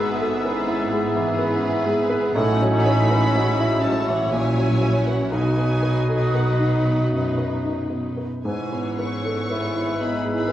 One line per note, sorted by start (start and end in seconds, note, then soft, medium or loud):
0.00 2.31 G#1 medium
0.00 2.31 G#2 medium
0.00 0.11 G#3 soft
0.00 2.32 G#3 medium
0.00 0.42 B3 medium
0.00 0.43 B3 soft
0.00 2.31 B3 medium
0.00 0.43 F#4 medium
0.00 0.42 G#4 medium
0.00 0.35 B4 soft
0.00 0.43 B4 medium
0.00 1.81 E5 medium
0.00 2.31 E6 soft
0.20 0.44 A4 soft
0.43 1.36 B3 medium
0.43 0.91 C#4 medium
0.43 2.34 E4 medium
0.43 0.91 G#4 medium
0.43 0.91 B4 medium
0.43 0.83 B4 medium
0.68 1.06 E4 medium
0.92 1.29 G#3 soft
0.92 2.32 B3 medium
0.92 2.35 G#4 medium
1.15 1.53 E3 soft
1.38 1.84 C#4 medium
1.38 2.35 B4 medium
1.38 1.76 B4 medium
1.63 2.00 E4 medium
1.84 2.25 G#3 medium
1.84 2.34 B3 medium
2.09 2.35 B4 medium
2.34 4.28 A1 medium
2.34 4.28 A2 medium
2.34 4.16 F#3 medium
2.34 3.34 A3 medium
2.34 4.00 C#4 medium
2.34 3.32 D#4 medium
2.34 4.00 D#4 medium
2.34 4.16 E4 medium
2.34 4.32 F#4 medium
2.34 3.33 C#5 medium
2.34 2.82 F#5 medium
2.34 4.98 E6 medium
2.61 3.01 F#3 medium
2.85 3.25 C#5 medium
2.85 3.82 B5 medium
3.11 3.35 B4 soft
3.34 4.31 G#3 medium
3.34 4.30 C#4 medium
3.34 3.74 C#5 medium
3.34 5.29 C#5 medium
3.60 3.98 E4 medium
3.81 4.22 F#3 soft
3.81 4.06 A5 medium
4.07 4.32 E3 soft
4.07 4.32 F#5 medium
4.31 5.30 A#1 medium
4.31 5.30 A#2 medium
4.31 5.29 A#2 medium
4.31 5.30 F#3 soft
4.31 5.31 F#3 medium
4.31 5.30 C#4 medium
4.31 5.33 C#4 medium
4.31 5.30 E4 medium
4.31 5.31 E4 medium
4.31 8.05 F#4 medium
4.31 5.06 G#5 medium
4.57 4.96 F#3 soft
4.81 5.22 C#5 soft
5.06 5.32 B4 soft
5.06 5.32 F#5 medium
5.31 8.41 B1 soft
5.31 8.22 B1 soft
5.31 6.82 B2 medium
5.31 8.22 B2 medium
5.31 8.18 F#3 soft
5.31 6.33 F#3 medium
5.31 8.22 D#4 medium
5.31 7.90 D#4 medium
5.31 8.22 D#4 soft
5.31 6.34 D#4 soft
5.31 8.22 B4 medium
5.31 6.33 G#5 medium
5.31 8.05 D#6 medium
5.58 5.99 B3 soft
5.83 6.24 B4 soft
6.09 6.34 A4 soft
6.34 8.06 F#3 soft
6.34 8.06 D#4 soft
6.34 6.76 B4 soft
6.34 7.37 F#5 soft
6.60 7.01 D#4 soft
6.86 7.27 B3 soft
7.12 7.53 F#2 soft
7.38 7.80 B4 soft
7.64 8.07 D#4 soft
7.90 8.34 B3 soft
8.17 8.45 B4 soft
8.44 10.52 G#1 soft
8.44 10.52 G#2 soft
8.44 9.47 E3 soft
8.44 10.52 B3 soft
8.44 9.47 C#4 soft
8.44 10.52 E4 soft
8.44 10.52 G#4 soft
8.44 10.52 B4 soft
8.44 10.46 C#5 soft
8.44 8.95 G#5 medium
8.44 10.52 E6 soft
8.72 9.15 B3 soft
8.99 9.41 B4 soft
8.99 10.01 C#6 medium
9.25 9.51 A4 soft
9.50 10.50 G#3 soft
9.50 10.01 B3 soft
9.50 10.03 E4 medium
9.50 9.91 B4 soft
9.75 10.15 E4 soft
10.01 10.40 B3 soft
10.01 10.52 D#4 soft
10.01 10.49 E4 soft
10.01 10.50 B5 medium
10.24 10.52 G#3 soft
10.48 10.52 F#3 soft
10.48 10.52 B4 soft